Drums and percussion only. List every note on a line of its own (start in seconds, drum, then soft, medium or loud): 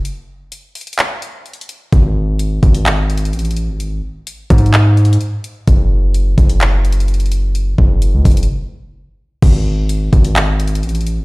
0.05 closed hi-hat medium
0.52 closed hi-hat medium
0.75 closed hi-hat soft
0.75 open hi-hat medium
0.81 closed hi-hat medium
0.87 closed hi-hat medium
0.93 closed hi-hat medium
0.99 clap loud
0.99 closed hi-hat medium
1.22 closed hi-hat medium
1.46 closed hi-hat soft
1.53 closed hi-hat medium
1.61 closed hi-hat medium
1.69 closed hi-hat medium
1.93 kick loud
1.93 closed hi-hat medium
2.39 closed hi-hat medium
2.63 kick loud
2.63 closed hi-hat medium
2.75 closed hi-hat medium
2.86 clap loud
2.86 closed hi-hat medium
3.10 closed hi-hat medium
3.17 closed hi-hat medium
3.25 closed hi-hat medium
3.33 closed hi-hat medium
3.39 closed hi-hat medium
3.45 closed hi-hat medium
3.51 closed hi-hat medium
3.57 closed hi-hat medium
3.80 closed hi-hat medium
4.27 closed hi-hat medium
4.50 kick loud
4.50 closed hi-hat medium
4.58 closed hi-hat medium
4.66 closed hi-hat soft
4.74 clap loud
4.74 closed hi-hat medium
4.97 closed hi-hat soft
5.05 closed hi-hat medium
5.13 closed hi-hat medium
5.21 closed hi-hat medium
5.44 closed hi-hat medium
5.67 kick loud
5.67 closed hi-hat medium
6.14 closed hi-hat medium
6.38 kick loud
6.38 closed hi-hat medium
6.50 closed hi-hat medium
6.61 clap loud
6.61 closed hi-hat medium
6.85 closed hi-hat medium
6.92 closed hi-hat medium
7.00 closed hi-hat medium
7.08 closed hi-hat medium
7.14 closed hi-hat medium
7.20 closed hi-hat medium
7.26 closed hi-hat medium
7.32 closed hi-hat medium
7.55 closed hi-hat medium
7.78 kick medium
8.02 closed hi-hat medium
8.25 kick loud
8.25 closed hi-hat soft
8.25 open hi-hat medium
8.31 closed hi-hat medium
8.37 closed hi-hat medium
8.43 closed hi-hat medium
9.42 kick loud
9.42 closed hi-hat medium
9.42 crash loud
9.89 closed hi-hat medium
10.13 kick loud
10.13 closed hi-hat medium
10.24 closed hi-hat medium
10.36 clap loud
10.36 closed hi-hat medium
10.60 closed hi-hat medium
10.67 closed hi-hat medium
10.75 closed hi-hat medium
10.83 closed hi-hat medium
10.89 closed hi-hat medium
10.95 closed hi-hat medium
11.01 closed hi-hat medium
11.07 closed hi-hat medium